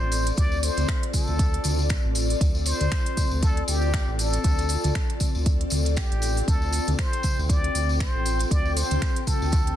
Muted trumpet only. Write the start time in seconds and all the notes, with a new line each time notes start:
Already playing: C5
0.38 D5
0.64 C5
1.15 A4
2.67 C5
3.43 A4
3.69 G4
4.19 A4
5.97 G4
6.48 A4
6.99 C5
7.50 D5
8.01 C5
8.51 D5
8.77 C5
9.27 A4